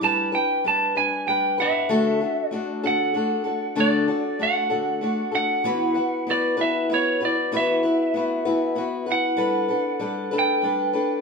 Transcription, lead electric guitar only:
0, 0, Header, 1, 2, 480
1, 0, Start_track
1, 0, Key_signature, 2, "major"
1, 0, Tempo, 623053
1, 29, Time_signature, 6, 3, 24, 8
1, 8637, End_track
2, 0, Start_track
2, 0, Title_t, "Lead electric guitar"
2, 0, Program_c, 0, 29
2, 33, Note_on_c, 0, 81, 91
2, 265, Note_off_c, 0, 81, 0
2, 269, Note_on_c, 0, 79, 79
2, 502, Note_off_c, 0, 79, 0
2, 522, Note_on_c, 0, 81, 80
2, 748, Note_off_c, 0, 81, 0
2, 751, Note_on_c, 0, 80, 95
2, 982, Note_off_c, 0, 80, 0
2, 985, Note_on_c, 0, 79, 101
2, 1221, Note_off_c, 0, 79, 0
2, 1234, Note_on_c, 0, 78, 114
2, 1246, Note_on_c, 0, 76, 88
2, 1466, Note_off_c, 0, 78, 0
2, 1916, Note_off_c, 0, 76, 0
2, 1916, Note_on_c, 0, 74, 88
2, 2212, Note_on_c, 0, 78, 85
2, 2229, Note_off_c, 0, 74, 0
2, 2930, Note_on_c, 0, 74, 76
2, 2945, Note_off_c, 0, 78, 0
2, 3412, Note_on_c, 0, 78, 90
2, 3416, Note_off_c, 0, 74, 0
2, 4115, Note_off_c, 0, 78, 0
2, 4124, Note_on_c, 0, 78, 106
2, 4861, Note_off_c, 0, 78, 0
2, 4863, Note_on_c, 0, 74, 85
2, 5091, Note_off_c, 0, 74, 0
2, 5094, Note_on_c, 0, 76, 95
2, 5331, Note_off_c, 0, 76, 0
2, 5346, Note_on_c, 0, 73, 94
2, 5577, Note_off_c, 0, 73, 0
2, 5585, Note_on_c, 0, 74, 96
2, 5817, Note_off_c, 0, 74, 0
2, 5829, Note_on_c, 0, 76, 94
2, 7023, Note_on_c, 0, 78, 107
2, 7047, Note_off_c, 0, 76, 0
2, 7996, Note_off_c, 0, 78, 0
2, 8003, Note_on_c, 0, 79, 94
2, 8637, Note_off_c, 0, 79, 0
2, 8637, End_track
0, 0, End_of_file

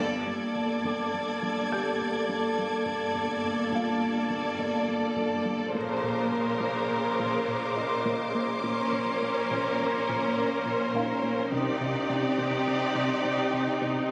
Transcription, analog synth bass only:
0, 0, Header, 1, 2, 480
1, 0, Start_track
1, 0, Key_signature, -2, "minor"
1, 0, Tempo, 576923
1, 2383, Time_signature, 5, 2, 24, 8
1, 11742, End_track
2, 0, Start_track
2, 0, Title_t, "Analog synth bass"
2, 0, Program_c, 0, 38
2, 0, Note_on_c, 0, 43, 90
2, 127, Note_off_c, 0, 43, 0
2, 220, Note_on_c, 0, 43, 47
2, 365, Note_off_c, 0, 43, 0
2, 462, Note_on_c, 0, 43, 45
2, 606, Note_off_c, 0, 43, 0
2, 705, Note_on_c, 0, 43, 62
2, 848, Note_off_c, 0, 43, 0
2, 946, Note_on_c, 0, 43, 45
2, 1089, Note_off_c, 0, 43, 0
2, 1185, Note_on_c, 0, 43, 66
2, 1328, Note_off_c, 0, 43, 0
2, 1425, Note_on_c, 0, 43, 47
2, 1569, Note_off_c, 0, 43, 0
2, 1667, Note_on_c, 0, 43, 42
2, 1810, Note_off_c, 0, 43, 0
2, 1904, Note_on_c, 0, 43, 65
2, 2048, Note_off_c, 0, 43, 0
2, 2148, Note_on_c, 0, 55, 45
2, 2290, Note_off_c, 0, 55, 0
2, 2378, Note_on_c, 0, 43, 63
2, 2523, Note_off_c, 0, 43, 0
2, 2623, Note_on_c, 0, 43, 46
2, 2767, Note_off_c, 0, 43, 0
2, 2862, Note_on_c, 0, 43, 48
2, 3006, Note_off_c, 0, 43, 0
2, 3096, Note_on_c, 0, 43, 63
2, 3242, Note_off_c, 0, 43, 0
2, 3341, Note_on_c, 0, 43, 46
2, 3485, Note_off_c, 0, 43, 0
2, 3576, Note_on_c, 0, 43, 69
2, 3722, Note_off_c, 0, 43, 0
2, 3820, Note_on_c, 0, 43, 49
2, 3965, Note_off_c, 0, 43, 0
2, 4057, Note_on_c, 0, 43, 46
2, 4203, Note_off_c, 0, 43, 0
2, 4293, Note_on_c, 0, 43, 72
2, 4440, Note_off_c, 0, 43, 0
2, 4537, Note_on_c, 0, 55, 46
2, 4682, Note_off_c, 0, 55, 0
2, 4781, Note_on_c, 0, 46, 68
2, 4925, Note_off_c, 0, 46, 0
2, 5023, Note_on_c, 0, 46, 51
2, 5167, Note_off_c, 0, 46, 0
2, 5261, Note_on_c, 0, 46, 51
2, 5405, Note_off_c, 0, 46, 0
2, 5494, Note_on_c, 0, 46, 73
2, 5641, Note_off_c, 0, 46, 0
2, 5739, Note_on_c, 0, 46, 46
2, 5884, Note_off_c, 0, 46, 0
2, 5987, Note_on_c, 0, 46, 71
2, 6129, Note_off_c, 0, 46, 0
2, 6224, Note_on_c, 0, 46, 51
2, 6368, Note_off_c, 0, 46, 0
2, 6462, Note_on_c, 0, 46, 49
2, 6606, Note_off_c, 0, 46, 0
2, 6703, Note_on_c, 0, 46, 75
2, 6847, Note_off_c, 0, 46, 0
2, 6946, Note_on_c, 0, 58, 48
2, 7089, Note_off_c, 0, 58, 0
2, 7185, Note_on_c, 0, 46, 70
2, 7328, Note_off_c, 0, 46, 0
2, 7424, Note_on_c, 0, 46, 55
2, 7568, Note_off_c, 0, 46, 0
2, 7669, Note_on_c, 0, 46, 49
2, 7811, Note_off_c, 0, 46, 0
2, 7910, Note_on_c, 0, 46, 67
2, 8052, Note_off_c, 0, 46, 0
2, 8152, Note_on_c, 0, 46, 51
2, 8293, Note_off_c, 0, 46, 0
2, 8396, Note_on_c, 0, 46, 73
2, 8536, Note_off_c, 0, 46, 0
2, 8626, Note_on_c, 0, 46, 50
2, 8769, Note_off_c, 0, 46, 0
2, 8866, Note_on_c, 0, 46, 49
2, 9009, Note_off_c, 0, 46, 0
2, 9101, Note_on_c, 0, 46, 70
2, 9246, Note_off_c, 0, 46, 0
2, 9341, Note_on_c, 0, 58, 52
2, 9486, Note_off_c, 0, 58, 0
2, 9583, Note_on_c, 0, 48, 75
2, 9727, Note_off_c, 0, 48, 0
2, 9824, Note_on_c, 0, 48, 54
2, 9968, Note_off_c, 0, 48, 0
2, 10065, Note_on_c, 0, 48, 51
2, 10208, Note_off_c, 0, 48, 0
2, 10300, Note_on_c, 0, 48, 70
2, 10445, Note_off_c, 0, 48, 0
2, 10542, Note_on_c, 0, 48, 48
2, 10686, Note_off_c, 0, 48, 0
2, 10775, Note_on_c, 0, 48, 69
2, 10921, Note_off_c, 0, 48, 0
2, 11018, Note_on_c, 0, 48, 54
2, 11163, Note_off_c, 0, 48, 0
2, 11259, Note_on_c, 0, 48, 49
2, 11404, Note_off_c, 0, 48, 0
2, 11496, Note_on_c, 0, 48, 75
2, 11642, Note_off_c, 0, 48, 0
2, 11742, End_track
0, 0, End_of_file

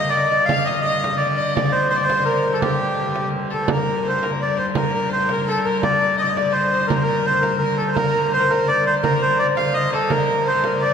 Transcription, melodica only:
0, 0, Header, 1, 2, 480
1, 0, Start_track
1, 0, Key_signature, -2, "minor"
1, 0, Tempo, 356083
1, 656, Time_signature, 3, 2, 24, 8
1, 14742, End_track
2, 0, Start_track
2, 0, Title_t, "Melodica"
2, 0, Program_c, 0, 22
2, 128, Note_on_c, 0, 74, 96
2, 597, Note_off_c, 0, 74, 0
2, 608, Note_on_c, 0, 77, 95
2, 854, Note_off_c, 0, 77, 0
2, 868, Note_on_c, 0, 75, 86
2, 1073, Note_off_c, 0, 75, 0
2, 1093, Note_on_c, 0, 75, 97
2, 1560, Note_off_c, 0, 75, 0
2, 1579, Note_on_c, 0, 74, 90
2, 2073, Note_off_c, 0, 74, 0
2, 2093, Note_on_c, 0, 74, 87
2, 2315, Note_on_c, 0, 72, 87
2, 2319, Note_off_c, 0, 74, 0
2, 2536, Note_off_c, 0, 72, 0
2, 2556, Note_on_c, 0, 72, 88
2, 2641, Note_on_c, 0, 74, 75
2, 2654, Note_off_c, 0, 72, 0
2, 2736, Note_on_c, 0, 72, 87
2, 2751, Note_off_c, 0, 74, 0
2, 3021, Note_off_c, 0, 72, 0
2, 3037, Note_on_c, 0, 70, 79
2, 3407, Note_on_c, 0, 69, 70
2, 3419, Note_off_c, 0, 70, 0
2, 3520, Note_on_c, 0, 67, 79
2, 3524, Note_off_c, 0, 69, 0
2, 4435, Note_off_c, 0, 67, 0
2, 4772, Note_on_c, 0, 69, 76
2, 5002, Note_off_c, 0, 69, 0
2, 5031, Note_on_c, 0, 70, 78
2, 5499, Note_off_c, 0, 70, 0
2, 5508, Note_on_c, 0, 72, 78
2, 5700, Note_on_c, 0, 70, 68
2, 5730, Note_off_c, 0, 72, 0
2, 5807, Note_off_c, 0, 70, 0
2, 5960, Note_on_c, 0, 74, 78
2, 6173, Note_off_c, 0, 74, 0
2, 6181, Note_on_c, 0, 72, 74
2, 6288, Note_off_c, 0, 72, 0
2, 6428, Note_on_c, 0, 70, 79
2, 6638, Note_off_c, 0, 70, 0
2, 6658, Note_on_c, 0, 70, 73
2, 6882, Note_off_c, 0, 70, 0
2, 6905, Note_on_c, 0, 72, 84
2, 7149, Note_off_c, 0, 72, 0
2, 7172, Note_on_c, 0, 70, 77
2, 7382, Note_on_c, 0, 69, 84
2, 7402, Note_off_c, 0, 70, 0
2, 7623, Note_on_c, 0, 70, 80
2, 7628, Note_off_c, 0, 69, 0
2, 7861, Note_on_c, 0, 74, 87
2, 7868, Note_off_c, 0, 70, 0
2, 8307, Note_off_c, 0, 74, 0
2, 8338, Note_on_c, 0, 75, 88
2, 8375, Note_on_c, 0, 74, 78
2, 8400, Note_off_c, 0, 75, 0
2, 8447, Note_off_c, 0, 74, 0
2, 8467, Note_on_c, 0, 75, 88
2, 8579, Note_on_c, 0, 74, 81
2, 8587, Note_off_c, 0, 75, 0
2, 8792, Note_on_c, 0, 72, 88
2, 8802, Note_off_c, 0, 74, 0
2, 9251, Note_off_c, 0, 72, 0
2, 9262, Note_on_c, 0, 70, 83
2, 9366, Note_on_c, 0, 72, 72
2, 9378, Note_off_c, 0, 70, 0
2, 9474, Note_off_c, 0, 72, 0
2, 9477, Note_on_c, 0, 70, 91
2, 9783, Note_off_c, 0, 70, 0
2, 9789, Note_on_c, 0, 72, 93
2, 9994, Note_on_c, 0, 70, 76
2, 10031, Note_off_c, 0, 72, 0
2, 10195, Note_off_c, 0, 70, 0
2, 10216, Note_on_c, 0, 70, 86
2, 10474, Note_on_c, 0, 69, 75
2, 10485, Note_off_c, 0, 70, 0
2, 10615, Note_on_c, 0, 72, 58
2, 10637, Note_off_c, 0, 69, 0
2, 10715, Note_on_c, 0, 70, 91
2, 10724, Note_off_c, 0, 72, 0
2, 11222, Note_off_c, 0, 70, 0
2, 11237, Note_on_c, 0, 72, 89
2, 11460, Note_on_c, 0, 70, 78
2, 11475, Note_off_c, 0, 72, 0
2, 11698, Note_on_c, 0, 74, 91
2, 11707, Note_off_c, 0, 70, 0
2, 11922, Note_off_c, 0, 74, 0
2, 11956, Note_on_c, 0, 72, 85
2, 12060, Note_off_c, 0, 72, 0
2, 12174, Note_on_c, 0, 70, 85
2, 12424, Note_off_c, 0, 70, 0
2, 12428, Note_on_c, 0, 72, 84
2, 12647, Note_off_c, 0, 72, 0
2, 12658, Note_on_c, 0, 74, 89
2, 12766, Note_off_c, 0, 74, 0
2, 12898, Note_on_c, 0, 77, 87
2, 13122, Note_off_c, 0, 77, 0
2, 13128, Note_on_c, 0, 75, 101
2, 13356, Note_off_c, 0, 75, 0
2, 13398, Note_on_c, 0, 69, 87
2, 13629, Note_on_c, 0, 70, 91
2, 13636, Note_off_c, 0, 69, 0
2, 14118, Note_off_c, 0, 70, 0
2, 14118, Note_on_c, 0, 72, 91
2, 14352, Note_on_c, 0, 70, 79
2, 14356, Note_off_c, 0, 72, 0
2, 14584, Note_on_c, 0, 74, 91
2, 14593, Note_off_c, 0, 70, 0
2, 14742, Note_off_c, 0, 74, 0
2, 14742, End_track
0, 0, End_of_file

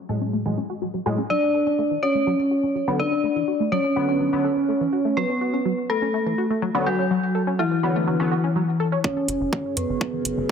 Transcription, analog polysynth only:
0, 0, Header, 1, 2, 480
1, 0, Start_track
1, 0, Tempo, 483871
1, 1291, Time_signature, 4, 2, 24, 8
1, 10429, End_track
2, 0, Start_track
2, 0, Title_t, "Analog polysynth"
2, 0, Program_c, 0, 90
2, 89, Note_on_c, 0, 45, 75
2, 89, Note_on_c, 0, 54, 69
2, 89, Note_on_c, 0, 56, 81
2, 423, Note_off_c, 0, 45, 0
2, 423, Note_off_c, 0, 54, 0
2, 423, Note_off_c, 0, 56, 0
2, 452, Note_on_c, 0, 45, 77
2, 452, Note_on_c, 0, 54, 70
2, 452, Note_on_c, 0, 56, 85
2, 582, Note_off_c, 0, 45, 0
2, 582, Note_off_c, 0, 54, 0
2, 582, Note_off_c, 0, 56, 0
2, 1050, Note_on_c, 0, 45, 93
2, 1051, Note_on_c, 0, 54, 88
2, 1051, Note_on_c, 0, 56, 103
2, 1184, Note_off_c, 0, 45, 0
2, 1184, Note_off_c, 0, 54, 0
2, 1184, Note_off_c, 0, 56, 0
2, 2853, Note_on_c, 0, 50, 86
2, 2853, Note_on_c, 0, 54, 82
2, 2854, Note_on_c, 0, 59, 98
2, 2982, Note_off_c, 0, 50, 0
2, 2982, Note_off_c, 0, 54, 0
2, 2983, Note_off_c, 0, 59, 0
2, 3931, Note_on_c, 0, 50, 74
2, 3931, Note_on_c, 0, 54, 68
2, 3931, Note_on_c, 0, 59, 84
2, 4264, Note_off_c, 0, 50, 0
2, 4264, Note_off_c, 0, 54, 0
2, 4264, Note_off_c, 0, 59, 0
2, 4293, Note_on_c, 0, 50, 78
2, 4293, Note_on_c, 0, 54, 72
2, 4293, Note_on_c, 0, 59, 86
2, 4422, Note_off_c, 0, 50, 0
2, 4422, Note_off_c, 0, 54, 0
2, 4422, Note_off_c, 0, 59, 0
2, 6692, Note_on_c, 0, 50, 86
2, 6692, Note_on_c, 0, 54, 82
2, 6692, Note_on_c, 0, 59, 97
2, 6822, Note_off_c, 0, 50, 0
2, 6822, Note_off_c, 0, 54, 0
2, 6822, Note_off_c, 0, 59, 0
2, 7769, Note_on_c, 0, 50, 75
2, 7769, Note_on_c, 0, 54, 69
2, 7769, Note_on_c, 0, 59, 85
2, 8103, Note_off_c, 0, 50, 0
2, 8103, Note_off_c, 0, 54, 0
2, 8103, Note_off_c, 0, 59, 0
2, 8132, Note_on_c, 0, 50, 77
2, 8132, Note_on_c, 0, 54, 71
2, 8132, Note_on_c, 0, 59, 89
2, 8262, Note_off_c, 0, 50, 0
2, 8262, Note_off_c, 0, 54, 0
2, 8262, Note_off_c, 0, 59, 0
2, 10429, End_track
0, 0, End_of_file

